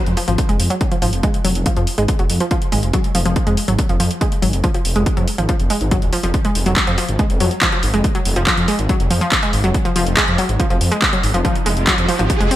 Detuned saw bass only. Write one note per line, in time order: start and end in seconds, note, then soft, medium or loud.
0.06 0.15 F2 medium
0.28 0.37 G#1 medium
0.49 0.58 F1 loud
0.60 0.69 F2 medium
1.02 1.11 G#1 loud
1.13 1.22 F1 medium
1.45 1.54 F1 medium
1.55 1.64 F1 medium
1.77 1.86 F2 medium
1.98 2.07 G#1 medium
2.19 2.28 F1 loud
2.30 2.39 F2 medium
2.72 2.81 G#1 loud
2.83 2.92 F1 medium
3.15 3.24 F1 loud
3.26 3.35 F1 loud
3.47 3.56 F2 medium
3.68 3.77 G#1 medium
3.89 3.98 F1 loud
4.00 4.09 F2 medium
4.42 4.52 G#1 loud
4.53 4.62 F1 medium
4.85 4.94 F1 medium
4.96 5.05 F1 loud
5.17 5.26 F2 medium
5.38 5.47 G#1 medium
5.60 5.69 F1 loud
5.81 5.99 G#1 medium
6.02 6.11 D#1 medium
6.23 6.32 F1 medium
6.55 6.64 F1 loud
6.66 6.75 F1 loud
6.87 6.96 F2 medium
7.09 7.17 G#1 medium
7.30 7.39 F1 loud
7.40 7.50 F2 medium
7.83 7.92 G#1 loud
7.94 8.03 F1 medium
8.25 8.35 F1 loud
8.36 8.45 F1 loud
8.57 8.66 F2 medium
8.79 8.88 G#1 medium
9.00 9.09 F1 loud
9.10 9.20 F2 medium
9.53 9.62 G#1 loud
9.64 9.73 F1 medium
9.96 10.05 F1 loud
10.06 10.15 F1 loud
10.28 10.37 F2 medium
10.49 10.58 G#1 medium
10.70 10.79 F1 loud
10.81 10.90 F2 medium
11.23 11.32 G#1 loud
11.34 11.43 F1 medium
11.66 11.75 F1 loud
11.77 11.86 F1 medium
11.98 12.07 F2 loud
12.19 12.28 G#1 medium
12.40 12.49 F1 loud